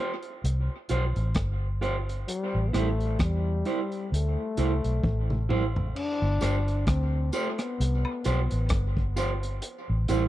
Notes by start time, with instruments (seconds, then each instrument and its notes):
Already playing: clean electric guitar F4
0.00 clean electric guitar G4 C5
0.23 closed hi-hat
0.44 fingered electric bass C2, closed hi-hat
0.89 fingered electric bass B1, clean electric guitar F4 G4 C5, closed hi-hat
1.16 fingered electric bass A1, closed hi-hat
1.34 fingered electric bass G1, kick, cross-stick, closed hi-hat
1.81 clean electric guitar F4 G4 C5, closed hi-hat
2.09 closed hi-hat
2.28 trombone G3, closed hi-hat
2.55 fingered electric bass A1
2.69 trombone B3
2.73 fingered electric bass A1, trombone A3, clean electric guitar E4 G4 C5, cross-stick, closed hi-hat
3.00 closed hi-hat
3.19 fingered electric bass E2, trombone G3, kick, cross-stick, closed hi-hat
3.65 clean electric guitar E4 G4 C5, closed hi-hat
3.92 closed hi-hat
4.12 fingered electric bass D2, trombone A3, closed hi-hat
4.57 fingered electric bass C2, clean electric guitar E4 G4 C5, closed hi-hat
4.84 fingered electric bass B1, closed hi-hat
5.04 fingered electric bass A1, kick, high tom
5.30 mid tom
5.49 clean electric guitar E4 G4 C5, mid tom
5.76 floor tom
5.96 trombone D4, crash
6.22 fingered electric bass G1
6.41 fingered electric bass G1, clean electric guitar F4 G4 C5, cross-stick, closed hi-hat, tambourine
6.68 closed hi-hat
6.87 fingered electric bass D2, trombone C4, kick, cross-stick, closed hi-hat
7.32 trombone A3, clean electric guitar F4 G4 C5, closed hi-hat, tambourine
7.58 trombone B3, cross-stick, closed hi-hat
7.80 fingered electric bass C2, closed hi-hat
8.05 high woodblock
8.24 fingered electric bass B1, clean electric guitar F4 G4 C5, closed hi-hat, tambourine
8.51 fingered electric bass A1, closed hi-hat
8.69 fingered electric bass G1, kick, cross-stick, closed hi-hat
8.97 kick
9.16 clean electric guitar F4 G4 C5, closed hi-hat, tambourine
9.43 closed hi-hat
9.62 closed hi-hat
9.89 fingered electric bass A1
10.08 fingered electric bass A1, clean electric guitar E4 G4 C5, closed hi-hat, tambourine